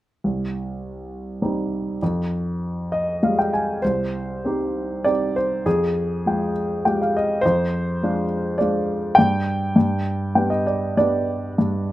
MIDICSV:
0, 0, Header, 1, 2, 480
1, 0, Start_track
1, 0, Key_signature, -3, "minor"
1, 0, Tempo, 597015
1, 190, Time_signature, 3, 2, 24, 8
1, 2584, Tempo, 611621
1, 4504, Tempo, 584795
1, 7864, Tempo, 608519
1, 9575, End_track
2, 0, Start_track
2, 0, Title_t, "Grand piano"
2, 0, Program_c, 0, 0
2, 195, Note_on_c, 0, 36, 35
2, 345, Control_c, 0, 64, 127
2, 1142, Note_on_c, 0, 55, 31
2, 1143, Note_on_c, 0, 60, 28
2, 1143, Note_on_c, 0, 63, 35
2, 1591, Note_off_c, 0, 36, 0
2, 1603, Note_off_c, 0, 55, 0
2, 1604, Note_off_c, 0, 60, 0
2, 1604, Note_off_c, 0, 63, 0
2, 1628, Note_on_c, 0, 41, 47
2, 1630, Control_c, 0, 64, 0
2, 1770, Control_c, 0, 64, 127
2, 2348, Note_on_c, 0, 75, 51
2, 2570, Note_off_c, 0, 75, 0
2, 2592, Note_on_c, 0, 56, 30
2, 2593, Note_on_c, 0, 65, 28
2, 2595, Note_on_c, 0, 55, 35
2, 2597, Note_on_c, 0, 77, 42
2, 2702, Note_off_c, 0, 77, 0
2, 2719, Note_on_c, 0, 79, 42
2, 2822, Note_off_c, 0, 79, 0
2, 2835, Note_on_c, 0, 80, 46
2, 3035, Note_off_c, 0, 41, 0
2, 3052, Note_off_c, 0, 56, 0
2, 3052, Note_off_c, 0, 80, 0
2, 3053, Note_off_c, 0, 55, 0
2, 3053, Note_off_c, 0, 65, 0
2, 3062, Note_on_c, 0, 72, 62
2, 3072, Control_c, 0, 64, 0
2, 3079, Note_on_c, 0, 36, 42
2, 3216, Control_c, 0, 64, 127
2, 3552, Note_on_c, 0, 60, 33
2, 3559, Note_on_c, 0, 63, 32
2, 3562, Note_on_c, 0, 67, 36
2, 4017, Note_off_c, 0, 60, 0
2, 4019, Note_off_c, 0, 63, 0
2, 4021, Note_on_c, 0, 74, 67
2, 4023, Note_off_c, 0, 67, 0
2, 4029, Note_on_c, 0, 60, 31
2, 4030, Note_on_c, 0, 63, 29
2, 4036, Note_on_c, 0, 67, 36
2, 4059, Note_off_c, 0, 72, 0
2, 4269, Note_on_c, 0, 72, 64
2, 4271, Note_off_c, 0, 74, 0
2, 4481, Note_off_c, 0, 36, 0
2, 4488, Note_off_c, 0, 72, 0
2, 4489, Note_off_c, 0, 60, 0
2, 4490, Note_off_c, 0, 63, 0
2, 4493, Note_off_c, 0, 67, 0
2, 4502, Note_on_c, 0, 41, 48
2, 4503, Note_on_c, 0, 68, 58
2, 4513, Control_c, 0, 64, 0
2, 4631, Control_c, 0, 64, 127
2, 4996, Note_on_c, 0, 56, 33
2, 5004, Note_on_c, 0, 65, 31
2, 5007, Note_on_c, 0, 79, 37
2, 5200, Note_off_c, 0, 68, 0
2, 5463, Note_off_c, 0, 56, 0
2, 5467, Note_off_c, 0, 65, 0
2, 5469, Note_off_c, 0, 79, 0
2, 5483, Note_on_c, 0, 79, 48
2, 5486, Note_on_c, 0, 56, 33
2, 5486, Note_on_c, 0, 65, 30
2, 5491, Note_on_c, 0, 67, 35
2, 5592, Note_off_c, 0, 79, 0
2, 5618, Note_on_c, 0, 77, 46
2, 5720, Note_off_c, 0, 77, 0
2, 5739, Note_on_c, 0, 75, 49
2, 5923, Note_off_c, 0, 41, 0
2, 5943, Note_on_c, 0, 72, 81
2, 5948, Note_off_c, 0, 56, 0
2, 5948, Note_off_c, 0, 65, 0
2, 5951, Note_off_c, 0, 67, 0
2, 5952, Note_off_c, 0, 75, 0
2, 5969, Control_c, 0, 64, 0
2, 5976, Note_on_c, 0, 41, 48
2, 6118, Control_c, 0, 64, 127
2, 6445, Note_on_c, 0, 56, 35
2, 6451, Note_on_c, 0, 65, 41
2, 6453, Note_on_c, 0, 62, 35
2, 6627, Note_off_c, 0, 72, 0
2, 6896, Note_off_c, 0, 56, 0
2, 6899, Note_off_c, 0, 65, 0
2, 6900, Note_off_c, 0, 62, 0
2, 6900, Note_on_c, 0, 74, 54
2, 6922, Note_on_c, 0, 56, 34
2, 6924, Note_on_c, 0, 62, 29
2, 6924, Note_on_c, 0, 65, 37
2, 7357, Note_off_c, 0, 41, 0
2, 7367, Note_on_c, 0, 79, 79
2, 7376, Note_off_c, 0, 56, 0
2, 7376, Note_off_c, 0, 65, 0
2, 7377, Note_off_c, 0, 62, 0
2, 7391, Control_c, 0, 64, 0
2, 7393, Note_off_c, 0, 74, 0
2, 7396, Note_on_c, 0, 43, 47
2, 7554, Control_c, 0, 64, 127
2, 7856, Note_off_c, 0, 43, 0
2, 7868, Note_on_c, 0, 43, 49
2, 7875, Control_c, 0, 64, 0
2, 8032, Control_c, 0, 64, 127
2, 8061, Note_off_c, 0, 79, 0
2, 8337, Note_on_c, 0, 55, 34
2, 8337, Note_on_c, 0, 79, 44
2, 8339, Note_on_c, 0, 59, 28
2, 8344, Note_on_c, 0, 62, 34
2, 8448, Note_off_c, 0, 79, 0
2, 8453, Note_on_c, 0, 75, 47
2, 8567, Note_off_c, 0, 75, 0
2, 8584, Note_on_c, 0, 74, 45
2, 8805, Note_off_c, 0, 55, 0
2, 8806, Note_off_c, 0, 59, 0
2, 8806, Note_off_c, 0, 74, 0
2, 8809, Note_off_c, 0, 62, 0
2, 8824, Note_on_c, 0, 55, 33
2, 8827, Note_on_c, 0, 74, 61
2, 8828, Note_on_c, 0, 59, 33
2, 8832, Note_on_c, 0, 62, 35
2, 9274, Note_off_c, 0, 43, 0
2, 9292, Note_off_c, 0, 55, 0
2, 9293, Note_off_c, 0, 59, 0
2, 9296, Note_off_c, 0, 62, 0
2, 9307, Note_on_c, 0, 43, 49
2, 9575, Note_off_c, 0, 43, 0
2, 9575, Note_off_c, 0, 74, 0
2, 9575, End_track
0, 0, End_of_file